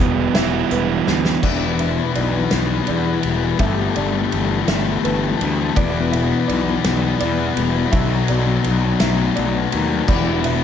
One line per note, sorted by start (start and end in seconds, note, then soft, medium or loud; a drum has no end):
0.00 0.26 E1 medium
0.00 1.08 E2 medium
0.00 0.33 E3 medium
0.00 0.34 E3 medium
0.00 0.33 G3 medium
0.00 0.36 G3 medium
0.00 0.34 B3 medium
0.00 1.07 B3 medium
0.00 0.33 E4 loud
0.00 1.40 E4 medium
0.00 1.40 G4 soft
0.00 1.41 B4 medium
0.00 0.36 D5 medium
0.00 1.41 G5 medium
0.34 0.63 E1 medium
0.34 1.44 E3 medium
0.34 1.43 E3 medium
0.34 1.42 G3 medium
0.34 1.42 B3 medium
0.34 1.41 E4 medium
0.34 0.72 E5 medium
0.34 snare loud
0.34 closed hi-hat medium
0.71 0.99 E1 medium
0.71 1.44 G3 medium
0.71 1.44 B4 medium
0.71 closed hi-hat medium
1.07 1.35 D2 medium
1.07 1.44 B3 medium
1.07 snare medium
1.25 snare medium
1.43 1.98 E1 medium
1.43 3.25 E2 medium
1.43 1.49 E3 medium
1.43 1.51 B3 medium
1.43 3.58 D4 medium
1.43 3.58 G4 soft
1.43 3.58 B4 soft
1.43 1.79 D5 medium
1.43 5.73 E5 medium
1.43 kick medium
1.43 crash medium
1.50 1.57 E3 soft
1.50 1.59 B3 soft
1.59 1.66 E3 medium
1.59 1.67 B3 medium
1.66 1.74 E3 soft
1.66 1.74 B3 soft
1.74 1.81 E3 medium
1.74 1.81 B3 medium
1.79 3.61 B2 medium
1.79 1.89 E3 soft
1.79 1.89 B3 medium
1.79 2.16 E5 medium
1.79 ride medium
1.89 1.97 E3 medium
1.89 1.97 B3 medium
1.97 2.04 E3 soft
1.97 2.05 B3 medium
2.04 2.12 E3 medium
2.04 2.13 B3 medium
2.12 2.20 E3 soft
2.12 2.87 E3 medium
2.12 2.20 B3 medium
2.12 2.86 D5 medium
2.12 ride medium
2.16 2.44 B1 medium
2.21 2.28 E3 medium
2.21 2.29 B3 medium
2.28 2.36 E3 soft
2.28 2.36 B3 medium
2.37 2.44 E3 medium
2.37 2.44 B3 medium
2.44 2.51 E3 soft
2.44 2.51 B3 medium
2.51 2.80 B1 medium
2.51 2.58 E3 medium
2.51 3.24 G3 medium
2.51 2.59 B3 medium
2.51 snare medium
2.51 ride medium
2.58 2.66 E3 soft
2.58 2.67 B3 medium
2.67 2.74 E3 medium
2.67 2.74 B3 medium
2.74 2.82 E3 soft
2.74 2.82 B3 medium
2.83 2.89 E3 medium
2.83 2.90 B3 medium
2.83 ride medium
2.88 3.16 E2 medium
2.88 4.00 E3 medium
2.88 2.97 E3 soft
2.88 2.98 B3 medium
2.88 3.60 D5 medium
2.98 3.05 E3 medium
2.98 3.06 B3 medium
3.07 3.14 E3 soft
3.07 3.14 B3 medium
3.14 3.21 E3 medium
3.14 3.22 B3 medium
3.21 3.52 E1 medium
3.21 3.29 E3 soft
3.21 4.69 G3 medium
3.21 3.30 B3 medium
3.21 ride medium
3.29 3.36 E3 medium
3.29 3.36 B3 medium
3.36 3.43 E3 soft
3.36 3.44 B3 soft
3.44 3.51 E3 soft
3.44 3.51 B3 medium
3.52 3.58 E3 soft
3.52 3.59 B3 soft
3.58 3.87 G1 medium
3.58 5.41 G2 medium
3.58 3.65 G3 medium
3.58 3.67 A3 medium
3.58 5.74 B3 medium
3.58 7.89 G4 medium
3.58 5.74 A4 medium
3.58 3.96 E5 medium
3.58 kick medium
3.58 ride medium
3.66 3.73 G3 soft
3.66 3.74 A3 soft
3.74 3.82 G3 medium
3.74 3.82 A3 medium
3.82 3.90 G3 soft
3.82 3.91 A3 soft
3.90 3.97 G3 medium
3.90 3.99 A3 medium
3.96 4.24 G1 medium
3.96 5.77 D3 medium
3.96 4.05 G3 soft
3.96 4.06 A3 medium
3.96 4.69 D5 medium
3.96 ride medium
4.06 4.12 G3 medium
4.06 4.13 A3 medium
4.13 4.20 G3 soft
4.13 4.20 A3 medium
4.21 4.28 G3 medium
4.21 4.28 A3 medium
4.28 4.36 G3 soft
4.28 4.37 A3 medium
4.28 ride medium
4.33 4.60 G1 medium
4.33 5.04 E3 medium
4.33 4.43 G3 medium
4.38 4.45 A3 medium
4.44 4.51 G3 soft
4.44 4.53 A3 medium
4.51 4.59 G3 medium
4.51 4.60 A3 medium
4.59 4.67 G3 soft
4.59 4.68 A3 medium
4.67 4.96 G1 medium
4.67 4.75 G3 medium
4.67 4.76 A3 medium
4.67 5.41 A3 medium
4.67 5.04 E5 medium
4.67 snare medium
4.67 ride medium
4.75 4.81 G3 medium
4.75 4.84 A3 medium
4.82 4.90 G3 medium
4.82 4.91 A3 medium
4.90 4.97 G3 medium
4.90 4.99 A3 soft
4.98 5.05 G3 medium
4.98 5.07 A3 medium
5.04 5.32 G1 medium
5.04 5.77 E3 medium
5.04 5.14 G3 soft
5.04 5.14 A3 medium
5.04 5.77 B4 medium
5.04 ride medium
5.14 5.21 G3 medium
5.14 5.21 A3 medium
5.21 5.29 G3 soft
5.21 5.29 A3 medium
5.29 5.37 G3 medium
5.29 5.37 A3 medium
5.37 5.45 G3 soft
5.37 5.45 A3 medium
5.37 ride medium
5.42 5.69 D2 medium
5.42 5.53 G3 medium
5.42 5.78 A3 medium
5.42 5.52 A3 medium
5.53 5.60 G3 soft
5.53 5.61 A3 soft
5.61 5.68 G3 soft
5.61 5.69 A3 medium
5.69 5.76 G3 soft
5.69 5.77 A3 soft
5.76 6.32 E1 medium
5.76 7.58 E2 medium
5.76 5.84 E3 medium
5.76 10.64 B3 medium
5.76 5.85 B3 medium
5.76 7.91 E4 medium
5.76 6.13 D5 medium
5.76 10.64 D5 medium
5.76 kick loud
5.76 ride medium
5.84 5.92 E3 soft
5.84 5.93 B3 medium
5.93 6.00 E3 medium
5.93 6.00 B3 medium
6.01 6.07 E3 medium
6.01 6.08 B3 medium
6.08 6.14 E3 medium
6.08 6.16 B3 medium
6.08 6.48 E5 medium
6.13 7.91 B2 medium
6.13 6.22 E3 medium
6.13 6.23 B3 medium
6.13 ride medium
6.23 6.30 E3 medium
6.23 6.31 B3 medium
6.31 6.38 E3 medium
6.31 6.39 B3 medium
6.39 6.47 E3 medium
6.39 6.46 B3 medium
6.46 6.77 B1 medium
6.46 6.53 E3 medium
6.46 7.20 E3 medium
6.46 6.54 B3 medium
6.46 7.19 D5 medium
6.46 ride medium
6.54 6.62 E3 medium
6.54 6.62 B3 medium
6.62 6.69 E3 medium
6.62 6.70 B3 medium
6.70 6.76 E3 medium
6.70 6.77 B3 medium
6.76 6.84 E3 medium
6.76 6.85 B3 medium
6.84 7.13 B1 medium
6.84 6.93 E3 medium
6.84 7.56 G3 medium
6.84 6.93 B3 medium
6.84 snare medium
6.84 ride medium
6.93 7.01 E3 medium
6.93 7.01 B3 medium
7.01 7.08 E3 medium
7.01 7.08 B3 medium
7.08 7.16 E3 medium
7.08 7.16 B3 medium
7.16 7.22 E3 medium
7.16 7.24 B3 medium
7.20 7.49 E2 medium
7.20 7.93 E3 medium
7.20 7.30 E3 medium
7.20 7.93 D5 medium
7.20 ride medium
7.24 7.32 B3 medium
7.31 7.39 E3 medium
7.31 7.39 B3 medium
7.39 7.46 E3 soft
7.39 7.47 B3 medium
7.47 7.54 E3 medium
7.47 7.55 B3 medium
7.54 7.85 E1 medium
7.54 7.62 E3 soft
7.54 7.93 G3 medium
7.54 7.62 B3 medium
7.54 ride medium
7.63 7.69 E3 medium
7.63 7.70 B3 medium
7.70 7.77 E3 medium
7.70 7.77 B3 soft
7.78 7.85 E3 medium
7.78 7.85 B3 medium
7.86 7.93 E3 soft
7.86 7.95 B3 soft
7.92 8.20 B1 medium
7.92 8.00 B2 medium
7.92 9.73 B2 medium
7.92 8.01 F#3 medium
7.92 10.07 F#4 medium
7.92 10.07 A4 medium
7.92 8.29 E5 medium
7.92 kick loud
7.92 ride medium
8.00 8.07 B2 soft
8.00 8.09 F#3 medium
8.08 8.15 B2 medium
8.08 8.15 F#3 medium
8.15 8.23 B2 soft
8.15 8.23 F#3 medium
8.23 8.31 B2 medium
8.23 8.31 F#3 medium
8.28 8.57 B1 medium
8.28 8.39 B2 medium
8.28 8.63 F#3 medium
8.28 8.39 F#3 medium
8.28 9.01 D5 medium
8.28 ride medium
8.40 8.46 B2 medium
8.40 8.46 F#3 medium
8.46 8.53 B2 medium
8.46 8.54 F#3 medium
8.54 8.60 B2 medium
8.54 8.62 F#3 medium
8.61 8.69 B2 medium
8.61 8.70 F#3 medium
8.61 9.36 F#3 medium
8.61 ride medium
8.66 8.93 B1 medium
8.66 8.78 B2 medium
8.70 8.78 F#3 medium
8.78 8.84 B2 medium
8.78 8.86 F#3 medium
8.85 8.92 B2 medium
8.85 8.94 F#3 medium
8.93 9.00 B2 soft
8.93 9.01 F#3 medium
9.00 9.29 B1 medium
9.00 9.08 B2 medium
9.00 9.09 F#3 medium
9.00 9.71 A3 medium
9.00 9.37 E5 medium
9.00 snare loud
9.00 ride medium
9.08 9.16 B2 medium
9.08 9.16 F#3 medium
9.16 9.23 B2 medium
9.16 9.25 F#3 medium
9.23 9.31 B2 medium
9.23 9.33 F#3 medium
9.31 9.39 B2 medium
9.31 9.40 F#3 medium
9.35 9.65 B1 medium
9.35 10.09 F#3 medium
9.35 10.06 D5 medium
9.35 ride medium
9.40 9.46 B2 medium
9.40 9.47 F#3 medium
9.46 9.54 B2 medium
9.46 9.55 F#3 medium
9.55 9.62 B2 soft
9.55 9.62 F#3 medium
9.62 9.69 B2 medium
9.62 9.70 F#3 medium
9.69 9.77 B2 medium
9.69 9.79 F#3 medium
9.69 10.09 A3 medium
9.69 ride medium
9.74 10.01 D#2 medium
9.78 9.86 B2 medium
9.78 9.86 F#3 medium
9.86 9.93 B2 soft
9.86 9.93 F#3 medium
9.93 10.00 B2 medium
9.93 10.01 F#3 medium
10.01 10.09 B2 soft
10.01 10.08 F#3 medium
10.08 10.63 E1 medium
10.08 10.64 E2 medium
10.08 10.16 E3 medium
10.08 10.16 B3 medium
10.08 10.64 E4 medium
10.08 10.64 G4 medium
10.08 10.45 D5 medium
10.08 kick loud
10.08 crash medium
10.16 10.23 E3 soft
10.16 10.23 B3 soft
10.24 10.31 E3 medium
10.24 10.31 B3 medium
10.32 10.40 E3 soft
10.32 10.39 B3 soft
10.39 10.47 E3 medium
10.39 10.47 B3 medium
10.44 10.64 B2 medium
10.44 10.55 E3 medium
10.44 10.54 B3 medium
10.44 10.64 E5 medium
10.44 ride medium
10.55 10.61 E3 medium
10.55 10.63 B3 medium